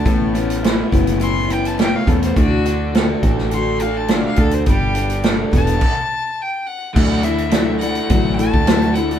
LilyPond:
<<
  \new Staff \with { instrumentName = "Fiddle" } { \time 4/4 \key d \major \tempo 4 = 104 a''4 r4 c'''8 g''16 a''16 g''16 f''16 a'16 c''16 | fis'4 r4 c'''8 f''16 a''16 f''16 f''16 a'16 c''16 | g'4 r8 a''4. g''8 fis''8 | fis''8 e''4 fis''4 a''4 fis''8 | }
  \new Staff \with { instrumentName = "Overdriven electric guitar" } { \time 4/4 \key d \major a,8 cis'8 e'8 b8 e'8 b8 cis'8 a8 | d8 d'8 a'8 fis'8 a'8 fis'8 d'8 d8 | g8 d'8 a'8 b8 r2 | <d a d' fis'>4 <d a d' fis'>16 <a d' fis'>16 <d a d' fis'>16 <a d' fis'>8 <a d' fis'>16 <d a d' fis'>8 <d a d' fis'>16 <a d' fis'>16 <d a d' fis'>16 <a d' fis'>16 | }
  \new Staff \with { instrumentName = "Steel-string acoustic guitar" } { \time 4/4 \key d \major <a, a b cis' e'>8 <b cis' e'>8 <a b cis' e'>8 <b cis' e'>8 <a, a b cis' e'>8 <b cis' e'>8 <a b cis' e'>8 <b cis' e'>8 | <d d' fis' a'>8 <d' fis' a'>8 <d d' fis' a'>8 <d' fis' a'>8 <d d' fis' a'>8 <d' fis' a'>8 <d d' fis' a'>8 <d' fis' a'>8 | <g b d' a'>8 <b d' a'>8 <g b d' a'>8 <b d' a'>8 r2 | <d fis a d' e'>8 <a d' e'>8 <fis a d' e'>8 <a d' e'>8 <d fis a d' e'>8 <a d' e'>8 <fis a d' e'>8 <a d' e'>8 | }
  \new Staff \with { instrumentName = "Fingered electric bass" } { \clef bass \time 4/4 \key d \major a,,4. fis,,2 e,8 | d,4. a,,2 d,8 | g,,4. e,,8 r2 | d,2 a,,8. d,4~ d,16 | }
  \new DrumStaff \with { instrumentName = "Drums" } \drummode { \time 4/4 <hh bd>8 hh16 hh16 <hh sn>8 <hh bd>16 hh16 hh8 hh16 hh16 <hh sn>8 <hh bd>16 hh16 | <hh bd>8 hh8 <hh sn>8 <hh bd>16 sn16 hh8 hh8 <hh sn>8 <hh bd>16 hh16 | <hh bd>8 hh16 hh16 <hh sn>8 <hh bd>16 hh16 <cymc bd>4 r4 | <cymc bd>8 hh16 hh16 <hh sn>8 hh16 hh16 <hh bd>8 hh16 bd16 <hh sn>16 hh16 hh16 hh16 | }
>>